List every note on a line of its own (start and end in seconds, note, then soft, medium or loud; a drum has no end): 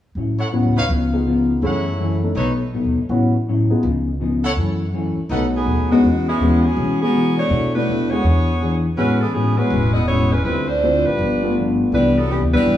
0.15 0.61 A1 medium
0.15 0.41 A2 soft
0.15 0.41 F#3 soft
0.15 0.41 C#4 soft
0.15 0.42 E4 soft
0.39 0.48 E4 medium
0.39 0.48 A4 medium
0.39 0.48 C#5 medium
0.39 0.48 F#5 medium
0.52 0.77 A2 medium
0.52 0.77 F#3 soft
0.52 0.74 B3 soft
0.52 0.74 C#4 soft
0.52 0.77 C#4 medium
0.52 0.74 E4 soft
0.52 0.78 E4 medium
0.52 0.74 F#4 soft
0.64 0.76 C#2 medium
0.75 0.88 D2 medium
0.75 0.84 D#4 medium
0.75 0.84 B4 medium
0.75 0.84 C#5 medium
0.75 0.84 F5 medium
0.89 1.59 C#2 medium
0.89 1.14 C#3 soft
0.89 1.15 F3 soft
0.89 1.15 B3 soft
0.89 1.15 D#4 soft
1.13 1.60 B3 soft
1.13 1.60 D#4 soft
1.13 1.60 F4 soft
1.13 1.60 G#4 soft
1.27 1.51 C#3 soft
1.27 1.51 F3 medium
1.27 1.52 B3 medium
1.27 1.52 D#4 medium
1.62 2.32 F#2 medium
1.62 1.87 F#2 soft
1.62 1.88 E3 soft
1.62 1.84 A3 soft
1.62 1.88 A3 soft
1.62 1.84 C#4 soft
1.62 1.88 C#4 soft
1.62 2.18 E4 medium
1.62 1.84 E4 soft
1.62 1.84 G#4 medium
1.62 2.18 A4 soft
1.62 2.18 C#5 soft
1.62 2.18 F#5 medium
1.99 2.24 F#2 medium
1.99 2.24 E3 medium
1.99 2.25 A3 medium
1.99 2.25 C#4 medium
2.23 2.35 A3 soft
2.23 2.35 C#4 soft
2.23 2.35 D#4 soft
2.23 2.35 A4 soft
2.35 2.81 B1 medium
2.35 2.61 B2 soft
2.35 2.61 F#3 soft
2.35 2.62 A3 soft
2.35 2.52 D#4 medium
2.35 2.62 D#4 soft
2.35 2.52 A4 medium
2.35 2.52 B4 medium
2.35 2.52 C#5 medium
2.74 2.98 B2 soft
2.74 2.99 F#3 medium
2.74 2.98 A3 soft
2.74 2.99 D#4 medium
2.84 2.96 D#2 medium
2.96 3.08 A#1 medium
3.09 3.66 A1 medium
3.09 3.35 A2 soft
3.09 3.36 F#3 soft
3.09 3.31 B3 soft
3.09 3.31 C#4 soft
3.09 3.36 C#4 soft
3.09 3.31 E4 soft
3.09 3.36 E4 soft
3.09 3.31 F#4 soft
3.48 3.72 A2 medium
3.48 3.72 F#3 medium
3.48 3.73 C#4 medium
3.48 3.73 E4 medium
3.70 3.82 B3 medium
3.70 3.82 D#4 soft
3.70 3.82 F4 soft
3.70 3.82 G#4 medium
3.70 muted upright bass stroke soft
3.83 4.53 C#2 medium
3.83 4.09 C#3 soft
3.83 4.09 F3 soft
3.83 4.09 B3 soft
3.83 4.09 D#4 soft
4.20 4.45 C#3 medium
4.20 4.45 F3 medium
4.20 4.45 B3 medium
4.20 4.46 D#4 medium
4.43 4.52 E4 medium
4.43 4.52 A4 medium
4.43 4.52 C#5 medium
4.43 4.52 F#5 medium
4.56 5.13 F#2 medium
4.56 4.82 F#2 soft
4.56 4.82 E3 soft
4.56 4.83 A3 soft
4.56 4.83 C#4 soft
4.93 5.18 F#2 soft
4.93 5.19 E3 medium
4.93 5.19 A3 medium
4.93 5.19 C#4 medium
5.17 muted upright bass stroke soft
5.29 5.64 B1 medium
5.29 5.55 B2 soft
5.29 5.56 F#3 soft
5.29 5.86 A3 soft
5.29 5.56 A3 soft
5.29 5.86 C#4 soft
5.29 5.46 D#4 medium
5.29 5.86 D#4 soft
5.29 5.56 D#4 soft
5.29 5.86 F#4 soft
5.29 5.46 A4 medium
5.29 5.46 B4 medium
5.29 5.46 F#5 medium
5.55 5.88 F#3 medium
5.55 5.89 B3 medium
5.55 5.88 D#4 medium
5.55 5.89 G#4 medium
5.66 6.00 D#2 medium
5.66 5.91 B2 soft
5.66 5.92 F#3 soft
5.66 5.92 A3 medium
5.66 5.92 D#4 medium
5.91 6.02 E2 medium
5.91 6.25 C#3 medium
5.91 6.25 G#3 medium
5.91 6.03 G#3 medium
5.91 6.25 B3 medium
5.91 6.03 B3 soft
5.91 6.03 C#4 soft
5.91 6.03 D#4 medium
5.91 6.25 F#4 medium
6.03 6.37 E2 medium
6.03 6.28 E3 soft
6.03 6.29 G#3 soft
6.03 6.29 C#4 soft
6.03 6.29 F#4 soft
6.27 6.62 G#3 medium
6.27 6.62 B3 medium
6.27 6.62 C#4 medium
6.27 6.61 E4 medium
6.40 6.74 D#2 medium
6.40 6.65 E3 medium
6.40 6.66 G#3 medium
6.40 6.62 G#3 soft
6.40 6.62 B3 soft
6.40 6.66 C#4 medium
6.40 6.62 C#4 soft
6.40 6.62 F#4 medium
6.40 6.66 F#4 medium
6.64 7.01 F#3 medium
6.64 7.00 B3 medium
6.64 7.01 C#4 medium
6.64 7.00 G#4 medium
6.77 7.47 B2 medium
6.77 7.02 E3 soft
6.77 7.02 G#3 soft
6.77 7.03 C#4 soft
6.77 7.03 F#4 soft
7.01 7.35 F#3 medium
7.01 7.49 G#3 soft
7.01 7.35 B3 medium
7.01 7.48 B3 soft
7.01 7.49 C#4 soft
7.01 7.36 C#4 medium
7.01 7.49 F#4 medium
7.01 7.35 G#4 medium
7.14 7.39 E3 soft
7.14 7.39 G#3 soft
7.14 7.39 C#4 soft
7.14 7.39 F#4 medium
7.38 7.72 A3 medium
7.38 7.72 D4 medium
7.38 7.72 F#4 medium
7.38 7.72 C#5 medium
7.49 7.75 B2 soft
7.49 7.84 B2 medium
7.49 7.76 A3 soft
7.49 7.76 D4 soft
7.49 7.76 E4 soft
7.74 8.09 A3 medium
7.74 7.87 A3 soft
7.74 7.87 C#4 soft
7.74 8.09 D4 medium
7.74 7.87 D4 soft
7.74 7.87 E4 medium
7.74 8.08 F#4 medium
7.74 8.09 B4 medium
7.87 8.21 D#2 medium
7.87 8.13 B2 soft
7.87 8.13 A3 medium
7.87 8.13 D4 medium
7.87 8.13 E4 medium
8.10 8.23 G#3 soft
8.10 8.84 B3 medium
8.10 8.23 C#4 soft
8.10 8.23 D4 soft
8.10 8.84 F#4 medium
8.10 8.23 F#4 medium
8.10 8.84 G#4 medium
8.10 8.84 C#5 loud
8.23 8.94 E2 medium
8.23 8.49 E3 soft
8.23 8.50 D4 soft
8.23 8.50 G#4 soft
8.23 8.50 C#5 soft
8.61 8.86 E3 medium
8.61 8.86 D4 medium
8.61 8.87 G#4 medium
8.61 8.87 C#5 medium
8.97 9.67 A1 medium
8.97 9.23 A2 soft
8.97 9.19 G#3 medium
8.97 9.19 G#3 soft
8.97 9.23 G#3 soft
8.97 9.19 B3 soft
8.97 9.19 C#4 medium
8.97 9.19 C#4 soft
8.97 9.24 C#4 soft
8.97 9.19 E4 medium
8.97 9.19 F#4 medium
8.97 9.24 F#4 soft
8.97 9.19 B4 medium
9.21 9.32 E3 medium
9.21 9.32 B3 medium
9.21 9.32 C#4 medium
9.21 9.33 A4 medium
9.33 9.60 A2 medium
9.33 9.57 E3 medium
9.33 9.60 G#3 medium
9.33 9.57 B3 medium
9.33 9.55 C#4 medium
9.33 9.60 C#4 medium
9.33 9.60 F#4 medium
9.33 9.57 G#4 medium
9.56 9.94 G#3 medium
9.56 9.70 G#3 soft
9.56 9.70 B3 soft
9.56 9.94 C#4 medium
9.56 9.70 C#4 soft
9.56 9.93 E4 medium
9.56 9.70 F#4 soft
9.56 9.94 B4 medium
9.70 10.41 E1 medium
9.70 9.97 A2 soft
9.70 9.97 G#3 soft
9.70 9.97 C#4 soft
9.70 9.97 F#4 soft
9.93 10.06 B3 medium
9.93 10.06 E4 medium
9.93 10.06 G#4 medium
9.93 10.06 D#5 medium
10.07 10.34 A2 soft
10.07 10.34 G#3 soft
10.07 10.30 B3 medium
10.07 10.34 C#4 medium
10.07 10.30 E4 medium
10.07 10.34 F#4 soft
10.07 10.29 G#4 medium
10.07 10.30 C#5 medium
10.32 10.45 G#3 medium
10.32 10.45 C#4 medium
10.32 10.43 E4 medium
10.32 10.43 B4 medium
10.44 11.01 D2 medium
10.44 10.71 D3 soft
10.44 10.67 G3 medium
10.44 10.71 A3 soft
10.44 10.67 C4 medium
10.44 10.71 C4 soft
10.44 10.66 E4 medium
10.44 10.66 B4 medium
10.48 10.72 F4 soft
10.67 11.05 A3 medium
10.67 11.04 D4 medium
10.67 11.04 F4 medium
10.67 11.05 C5 medium
10.83 11.07 D3 soft
10.83 11.04 A3 soft
10.83 11.08 A3 medium
10.83 11.04 C4 soft
10.83 11.08 C4 soft
10.83 11.04 E4 soft
10.83 11.04 F4 soft
10.83 11.08 F4 medium
11.05 11.17 A1 medium
11.05 11.55 G3 medium
11.05 11.55 D4 medium
11.05 11.55 F4 medium
11.05 11.55 B4 medium
11.19 11.89 G1 medium
11.19 11.44 G2 soft
11.19 11.45 F3 soft
11.19 11.45 B3 soft
11.19 11.45 D4 soft
11.43 11.90 A3 soft
11.43 11.90 B3 soft
11.43 11.90 D4 soft
11.43 11.90 F4 medium
11.57 11.81 G2 soft
11.57 11.81 F3 medium
11.57 11.82 B3 medium
11.57 11.82 D4 medium
11.92 12.38 C2 medium
11.92 12.18 C3 soft
11.92 12.18 E3 soft
11.92 12.14 G3 soft
11.92 12.15 G3 medium
11.92 12.14 B3 soft
11.92 12.19 B3 soft
11.92 12.14 D4 soft
11.92 12.15 D4 medium
11.92 12.19 D4 soft
11.92 12.14 E4 medium
11.92 12.15 E4 medium
11.92 12.15 B4 medium
12.18 12.30 F#3 medium
12.18 12.30 B3 medium
12.18 12.30 D4 medium
12.18 12.30 A4 medium
12.29 12.54 C3 medium
12.29 12.54 E3 medium
12.29 12.41 E3 medium
12.29 12.55 B3 medium
12.29 12.41 B3 medium
12.29 12.55 D4 medium
12.29 12.42 D4 medium
12.29 12.41 G4 medium
12.41 12.52 D2 medium
12.53 12.65 B1 medium
12.53 12.77 G3 soft
12.53 12.77 G3 medium
12.53 12.77 B3 soft
12.53 12.77 D4 soft
12.53 12.77 D4 medium
12.53 12.77 E4 medium
12.53 12.77 B4 medium
12.65 12.77 G1 medium
12.65 12.77 C3 soft
12.65 12.77 E3 soft
12.65 12.77 B3 soft
12.65 12.77 D4 soft